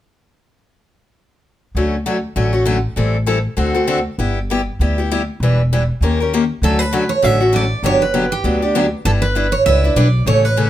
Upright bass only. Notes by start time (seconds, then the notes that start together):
1.75 D2
2.36 A1
2.96 A1
3.57 D2
4.18 G1
4.79 D2
5.40 E1
6.01 D#2
6.62 D2
7.23 A1
7.83 G1
8.44 D2
9.05 G1
9.66 C#2
9.96 B1
10.26 A1